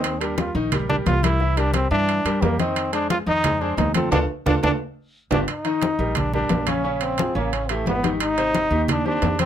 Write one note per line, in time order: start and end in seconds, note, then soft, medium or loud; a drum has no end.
0.00 0.49 D#2 medium
0.00 0.15 D#3 medium
0.00 0.22 C4 medium
0.00 0.15 D#4 medium
0.00 0.15 D#5 medium
0.04 high conga soft
0.04 high timbale medium
0.20 0.49 G3 medium
0.20 0.37 D4 medium
0.20 0.49 G4 medium
0.20 0.49 A#4 medium
0.20 high conga soft
0.20 high timbale medium
0.38 0.54 F4 medium
0.38 high conga medium
0.38 high timbale medium
0.38 low timbale soft
0.55 1.02 A#1 medium
0.55 0.69 D#3 medium
0.55 0.69 D#4 medium
0.55 0.69 D#5 medium
0.55 high conga soft
0.72 0.86 G3 medium
0.72 0.86 G4 medium
0.72 0.87 A#4 medium
0.72 high conga soft
0.72 low conga medium
0.72 high timbale medium
0.89 1.17 G3 medium
0.89 0.97 D4 medium
0.89 1.17 G4 medium
0.89 1.18 A#4 medium
0.89 high conga soft
0.89 low conga medium
1.06 1.86 C2 medium
1.06 1.25 F4 loud
1.06 high conga medium
1.06 high timbale medium
1.06 low timbale medium
1.23 1.37 G3 medium
1.23 1.59 E4 medium
1.23 1.38 G4 medium
1.23 1.38 A#4 medium
1.23 high conga medium
1.23 high timbale loud
1.40 1.54 E3 medium
1.40 1.54 E4 medium
1.40 1.54 E5 medium
1.40 high conga soft
1.57 1.85 G3 medium
1.57 1.74 D4 loud
1.57 1.85 G4 medium
1.57 1.85 A#4 medium
1.57 high conga soft
1.57 high timbale medium
1.74 1.90 C4 medium
1.74 high conga medium
1.74 high timbale medium
1.74 low timbale medium
1.91 2.23 G2 loud
1.91 2.19 E3 medium
1.91 2.43 D4 loud
1.91 2.19 E4 medium
1.91 2.19 E5 medium
1.91 high conga soft
2.08 high conga soft
2.08 high timbale medium
2.25 2.41 G2 medium
2.25 2.39 G3 medium
2.25 2.40 G4 medium
2.25 2.39 A#4 medium
2.25 high conga soft
2.25 high timbale medium
2.42 3.22 F2 medium
2.42 2.56 G3 medium
2.42 2.61 A#3 medium
2.42 2.56 G4 medium
2.42 2.57 A#4 medium
2.42 high conga medium
2.42 low timbale medium
2.59 2.87 D#3 medium
2.59 2.93 C4 medium
2.59 2.88 D#4 medium
2.59 2.88 D#5 medium
2.59 high conga medium
2.59 high timbale medium
2.76 high conga soft
2.76 high timbale medium
2.93 3.21 G#3 medium
2.93 3.09 D4 loud
2.93 3.21 G#4 medium
2.93 3.21 C5 medium
2.93 high conga soft
2.93 high timbale medium
3.10 3.18 F4 medium
3.10 high conga medium
3.10 high timbale medium
3.10 low timbale medium
3.26 3.74 F2 loud
3.26 3.41 D#3 medium
3.26 3.41 D#4 medium
3.26 3.63 D#4 loud
3.26 3.41 D#5 medium
3.26 high conga soft
3.44 3.58 G#3 medium
3.44 3.58 G#4 medium
3.44 3.58 C5 medium
3.44 high conga soft
3.44 low conga medium
3.44 high timbale medium
3.61 3.89 G#3 medium
3.61 3.77 D4 medium
3.61 3.89 G#4 medium
3.61 3.89 C5 medium
3.61 high conga soft
3.77 4.10 D2 loud
3.77 3.94 D#4 medium
3.77 high conga medium
3.77 high timbale medium
3.77 low timbale medium
3.94 4.09 F3 medium
3.94 4.11 C4 medium
3.94 4.09 F4 medium
3.94 4.10 A4 medium
3.94 high conga medium
3.94 high timbale medium
4.11 4.25 D2 medium
4.11 4.23 D4 medium
4.11 4.20 D4 loud
4.11 4.23 F4 loud
4.11 4.23 A4 loud
4.11 low conga medium
4.11 high timbale loud
4.46 4.59 D2 medium
4.46 4.57 D4 medium
4.46 4.55 D4 medium
4.46 4.57 F4 loud
4.46 4.57 A4 medium
4.46 low conga loud
4.46 high timbale medium
4.63 4.76 D2 medium
4.63 4.74 D4 medium
4.63 4.72 D4 loud
4.63 4.74 F4 medium
4.63 4.74 A4 medium
4.63 low conga loud
4.63 high timbale medium
5.31 5.44 G1 medium
5.31 5.42 D4 medium
5.31 5.40 D4 medium
5.31 5.42 F4 medium
5.31 5.42 G4 medium
5.31 low conga medium
5.31 high timbale loud
5.48 6.20 D#4 medium
5.48 high conga soft
5.48 high timbale medium
5.65 5.93 D#3 medium
5.65 5.93 D#4 medium
5.65 5.93 D#5 medium
5.65 high conga soft
5.65 high timbale medium
5.82 high conga loud
5.82 high timbale medium
5.82 low timbale soft
5.99 6.46 A#1 medium
5.99 6.27 G3 medium
5.99 6.27 G4 medium
5.99 6.27 A#4 medium
5.99 high conga soft
6.15 6.34 D4 medium
6.15 high conga soft
6.15 low conga medium
6.15 high timbale medium
6.34 6.62 G3 medium
6.34 6.66 D4 medium
6.34 6.62 G4 medium
6.34 6.62 A#4 medium
6.34 high conga soft
6.34 low conga medium
6.49 7.30 A#1 medium
6.49 high conga medium
6.49 high timbale medium
6.49 low timbale medium
6.67 6.81 C#3 medium
6.67 6.81 C#4 medium
6.67 7.04 C#4 medium
6.67 6.81 C#5 medium
6.67 high conga medium
6.67 high timbale medium
6.84 7.12 C#3 medium
6.84 7.12 C#4 medium
6.84 7.12 C#5 medium
6.84 high conga soft
7.01 7.36 C4 medium
7.01 high conga soft
7.01 high timbale medium
7.18 7.32 F3 medium
7.18 7.32 F4 medium
7.18 7.33 G#4 medium
7.18 high conga medium
7.18 high timbale medium
7.18 low timbale soft
7.35 7.83 A1 loud
7.35 7.63 C#3 medium
7.35 7.55 A#3 medium
7.35 7.63 C#4 medium
7.35 7.64 C#5 medium
7.35 high conga soft
7.53 7.73 C#4 medium
7.53 high conga soft
7.53 high timbale medium
7.69 7.98 E3 medium
7.69 7.87 A3 medium
7.69 7.98 E4 medium
7.69 7.98 G4 medium
7.69 high conga soft
7.69 high timbale medium
7.86 8.65 G#1 medium
7.86 8.11 B3 medium
7.86 high conga medium
7.86 low timbale medium
8.03 8.31 D#3 medium
8.03 8.31 D#4 medium
8.03 8.31 G4 medium
8.03 high conga medium
8.03 high timbale medium
8.20 8.85 D#4 loud
8.20 high conga soft
8.20 high timbale loud
8.38 8.65 C3 medium
8.38 8.66 C4 medium
8.38 8.66 C5 medium
8.38 high conga soft
8.38 high timbale medium
8.55 high conga medium
8.55 high timbale medium
8.55 low timbale soft
8.70 9.18 D#2 medium
8.70 8.99 D#3 medium
8.70 8.99 D#4 medium
8.70 9.00 G4 medium
8.70 high conga soft
8.88 9.06 D4 loud
8.88 high conga soft
8.88 low conga medium
8.88 high timbale medium
9.05 9.33 D#3 medium
9.05 9.33 C4 medium
9.05 9.38 D4 loud
9.05 9.33 G4 medium
9.05 high conga soft
9.22 9.46 F2 medium
9.22 high conga medium
9.22 high timbale medium
9.22 low timbale medium
9.39 9.46 C3 medium
9.39 9.46 C4 medium
9.39 9.46 C5 medium
9.39 high conga medium
9.39 high timbale medium